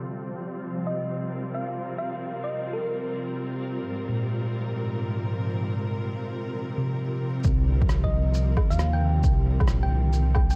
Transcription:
0.00 3.87 C3 medium
0.00 7.46 F3 medium
0.00 10.56 G3 medium
0.00 10.56 C4 medium
0.00 7.45 F4 medium
0.00 10.56 F4 medium
0.00 0.29 A4 medium
0.87 1.10 D#5 medium
1.26 10.56 A#4 medium
1.54 1.74 F5 medium
1.98 2.41 F5 medium
2.44 2.73 D#5 medium
2.73 3.38 A#4 medium
3.86 7.45 G#2 medium
3.92 10.56 C3 medium
4.09 5.53 A#2 soft
6.77 7.63 C3 medium
7.44 8.55 C2 loud
7.44 kick loud
7.44 shaker medium
7.67 9.11 D3 medium
7.82 kick loud
7.86 9.22 F3 medium
7.86 cross-stick loud
7.86 shaker medium
8.04 8.27 D#5 medium
8.04 kick medium
8.34 shaker medium
8.57 kick loud
8.57 low woodblock medium
8.70 9.22 D#2 loud
8.70 8.90 F5 medium
8.70 shaker medium
8.79 cross-stick loud
8.79 shaker medium
8.93 9.38 G5 medium
9.23 9.59 C2 loud
9.23 kick loud
9.23 shaker medium
9.60 10.56 C2 medium
9.60 kick loud
9.60 low woodblock medium
9.68 10.56 A#2 medium
9.68 cross-stick loud
9.68 shaker medium
9.83 10.34 G5 medium
9.88 10.56 D3 medium
10.01 10.56 D#3 medium
10.13 shaker medium
10.35 10.45 G5 medium
10.35 kick loud
10.35 low woodblock medium
10.50 10.55 G5 medium
10.50 shaker medium

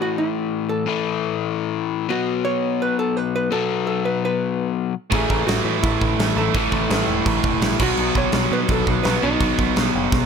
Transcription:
0.00 0.85 A2 medium
0.00 0.85 E3 loud
0.00 0.86 A3 medium
0.00 0.18 F#4 loud
0.18 0.71 E4 medium
0.69 1.36 A4 loud
0.86 2.08 A2 medium
0.86 2.10 E3 medium
0.86 2.10 A3 medium
2.09 3.50 B2 loud
2.09 3.51 F#3 medium
2.09 3.52 B3 loud
2.09 2.47 F#4 medium
2.45 2.82 C#5 loud
2.82 2.98 B4 loud
2.99 3.17 A4 loud
3.17 3.34 B4 loud
3.36 3.51 B4 loud
3.51 4.93 B2 loud
3.51 4.93 F#3 loud
3.51 4.94 B3 loud
3.51 3.86 A4 loud
3.87 4.05 A4 medium
4.05 4.24 B4 loud
4.25 4.74 B4 loud
5.11 5.24 A1 loud
5.11 6.52 A2 loud
5.11 6.54 E3 loud
5.11 6.55 A3 loud
5.11 5.50 G#4 medium
5.11 kick loud
5.11 crash medium
5.30 5.42 A1 loud
5.30 kick medium
5.47 5.60 A1 medium
5.47 5.82 F#4 medium
5.47 snare loud
5.47 crash medium
5.65 5.77 A2 medium
5.83 5.95 A1 loud
5.83 6.38 E4 medium
5.83 kick loud
5.83 crash medium
6.01 6.13 A1 medium
6.01 kick medium
6.18 6.30 A1 medium
6.18 snare loud
6.18 crash medium
6.36 6.48 A1 loud
6.36 6.51 A2 medium
6.36 6.53 E3 medium
6.36 6.53 A3 medium
6.36 7.05 A4 loud
6.54 6.67 A1 loud
6.54 7.78 A2 medium
6.54 7.79 E3 medium
6.54 7.80 A3 loud
6.54 kick loud
6.54 crash medium
6.72 6.85 A1 loud
6.72 kick medium
6.90 7.02 A1 medium
6.90 snare loud
6.90 crash medium
7.08 7.20 E1 loud
7.26 7.38 A1 loud
7.26 kick loud
7.26 crash medium
7.44 7.56 E1 medium
7.44 kick loud
7.62 7.74 A#1 loud
7.62 snare loud
7.62 crash medium
7.79 7.92 B1 loud
7.79 9.21 B2 medium
7.79 9.22 F#3 loud
7.79 9.23 B3 loud
7.79 8.18 F#4 loud
7.79 kick loud
7.79 crash loud
7.97 8.10 B1 loud
7.97 crash medium
8.15 8.27 B1 loud
8.15 8.53 C#5 loud
8.15 kick medium
8.32 8.45 B1 loud
8.32 snare loud
8.32 crash medium
8.51 8.63 B2 loud
8.51 8.58 B4 loud
8.68 8.81 B1 loud
8.68 8.89 A4 medium
8.68 kick loud
8.68 crash medium
8.87 8.99 B1 loud
8.87 9.02 B4 loud
8.87 kick medium
9.03 9.17 B1 loud
9.03 9.21 B2 medium
9.03 9.22 F#3 medium
9.03 9.23 B4 loud
9.03 snare loud
9.03 crash medium
9.08 9.23 B3 medium
9.22 9.35 B1 medium
9.22 10.26 B2 loud
9.22 10.26 F#3 loud
9.22 10.26 B3 loud
9.22 10.26 D#4 medium
9.40 9.52 B1 loud
9.40 kick loud
9.40 crash medium
9.59 9.71 B1 medium
9.59 kick loud
9.76 9.89 B1 loud
9.76 snare loud
9.76 crash medium
9.95 10.07 F#1 loud
10.12 10.24 B1 loud
10.12 kick loud
10.12 snare medium

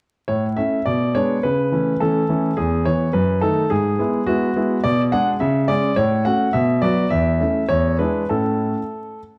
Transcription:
0.28 0.56 A2 soft
0.28 0.45 C#5 medium
0.56 0.78 A3 soft
0.56 0.78 C#4 soft
0.56 0.78 E4 soft
0.56 0.83 E5 medium
0.85 1.14 B2 soft
0.85 1.14 D5 medium
1.15 1.36 G#3 soft
1.15 1.36 B3 soft
1.15 1.36 D4 soft
1.15 1.43 C#5 medium
1.43 1.71 C#3 soft
1.43 2.00 B4 medium
1.72 1.92 E3 soft
1.72 1.93 A3 soft
1.72 1.93 C#4 soft
2.00 2.21 E3 soft
2.00 2.22 A3 soft
2.00 2.22 C#4 soft
2.00 2.57 A4 medium
2.29 2.49 E3 soft
2.29 2.50 A3 soft
2.29 2.50 C#4 soft
2.57 2.85 E2 soft
2.57 2.83 G#4 medium
2.85 3.07 E3 soft
2.85 3.07 B3 soft
2.85 3.11 C#5 medium
3.13 3.42 F#2 medium
3.13 3.39 B4 medium
3.41 3.63 D#3 soft
3.41 3.63 A3 soft
3.41 3.63 D#4 soft
3.41 3.70 A4 medium
3.70 3.98 G#2 medium
3.70 4.27 G#4 medium
3.99 4.19 G#3 soft
3.99 4.20 B3 soft
3.99 4.20 E4 soft
4.26 4.48 G#3 soft
4.26 4.48 B3 soft
4.26 4.48 E4 soft
4.26 4.80 F#4 medium
4.56 4.76 G#3 soft
4.56 4.76 B3 soft
4.56 4.77 E4 soft
4.84 5.12 B2 medium
4.84 5.01 D5 medium
5.12 5.33 G#3 soft
5.12 5.33 D4 soft
5.12 5.34 G#4 soft
5.12 5.29 F#5 medium
5.40 5.68 C#3 medium
5.40 5.69 E5 medium
5.68 5.89 G#3 soft
5.68 5.90 C#4 soft
5.68 5.90 G#4 soft
5.68 5.94 D5 medium
5.96 6.25 A2 medium
5.96 6.22 C#5 medium
6.25 6.46 A3 soft
6.25 6.46 C#4 soft
6.25 6.47 F#4 soft
6.25 6.54 F#5 medium
6.53 6.82 B2 medium
6.53 6.82 E5 medium
6.82 7.03 F#3 soft
6.82 7.04 B3 soft
6.82 7.04 F#4 soft
6.82 7.08 D5 medium
7.10 7.40 E2 medium
7.10 7.70 E5 medium
7.41 7.62 A3 soft
7.41 7.62 C#4 soft
7.41 7.62 E4 soft
7.69 7.99 E2 soft
7.69 7.96 C#5 medium
7.99 8.21 G#3 soft
7.99 8.22 D4 soft
7.99 8.22 E4 soft
7.99 8.26 B4 medium
8.29 8.72 A2 soft
8.29 8.78 C#4 soft
8.29 8.78 E4 soft
8.29 9.20 A4 medium

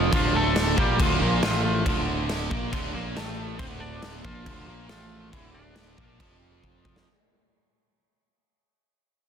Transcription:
0.00 0.11 F2 medium
0.00 0.12 F3 loud
0.11 0.74 D1 loud
0.11 0.75 D2 medium
0.11 0.77 D3 loud
0.11 0.33 F3 medium
0.11 0.34 F4 loud
0.11 kick loud
0.11 crash medium
0.35 0.75 A3 medium
0.35 0.79 A4 loud
0.56 snare loud
0.56 crash medium
0.76 0.98 A#1 medium
0.76 0.98 A#2 medium
0.76 0.99 G3 medium
0.76 0.98 A#3 loud
0.76 0.99 G4 loud
0.76 kick loud
0.98 1.20 D1 loud
0.98 1.20 D2 medium
0.98 1.20 D3 loud
0.98 1.41 F3 medium
0.98 kick loud
0.98 crash medium
1.02 1.42 F4 medium
1.20 1.42 A#1 loud
1.20 1.42 A#2 medium
1.20 1.42 A#3 loud
1.43 1.83 A1 loud
1.43 1.84 A2 medium
1.43 1.64 F3 medium
1.43 1.85 A3 loud
1.43 1.63 F4 medium
1.43 snare loud
1.43 crash medium
1.65 2.06 F3 medium
1.65 2.05 F4 medium
1.85 2.47 D1 loud
1.85 2.50 D2 medium
1.85 2.51 D3 medium
1.85 kick loud
1.85 crash medium
2.29 snare loud
2.29 crash medium
2.50 2.72 A#1 medium
2.50 2.71 A#2 medium
2.50 2.73 A#3 loud
2.50 kick loud
2.72 2.93 D1 loud
2.72 2.94 D2 loud
2.72 2.94 D3 loud
2.72 kick loud
2.72 crash medium
2.94 3.15 A#1 loud
2.94 3.15 A#2 medium
2.94 3.16 A#3 loud
3.15 3.57 A1 loud
3.15 3.59 A2 loud
3.15 3.60 A3 loud
3.15 snare loud
3.15 crash medium
3.59 4.21 D1 medium
3.59 4.24 D2 medium
3.59 4.25 D3 loud
3.59 3.65 C4 loud
3.59 3.65 C5 medium
3.59 kick loud
3.59 crash medium
3.80 4.24 D4 loud
3.80 4.21 D5 medium
4.03 snare loud
4.03 crash medium
4.24 4.45 A#1 loud
4.24 4.46 A#2 medium
4.24 4.86 F3 medium
4.24 4.46 A#3 loud
4.24 4.86 F4 loud
4.24 kick loud
4.46 4.67 D1 medium
4.46 4.68 D2 loud
4.46 4.68 D3 loud
4.46 kick loud
4.46 crash medium
4.68 4.88 A#1 loud
4.68 4.89 A#2 medium
4.68 4.90 A#3 loud
4.89 5.30 A1 loud
4.89 5.32 A2 medium
4.89 5.31 F3 medium
4.89 5.32 A3 loud
4.89 5.30 F4 loud
4.89 snare loud
4.89 crash medium
5.32 5.94 D1 loud
5.32 5.97 D2 loud
5.32 5.97 D3 loud
5.32 5.54 E3 medium
5.32 5.54 E4 medium
5.32 kick loud
5.32 crash medium
5.54 6.37 D4 medium
5.54 6.37 D5 medium
5.76 snare loud
5.76 crash medium
5.97 6.18 A#1 medium
5.97 6.19 A#2 medium
5.97 6.19 A#3 loud
5.97 kick loud
6.20 7.02 F1 medium
6.20 7.06 F2 medium
6.20 7.06 F3 loud
6.20 kick loud
6.20 crash medium
6.64 kick medium
6.85 kick medium
6.96 snare loud

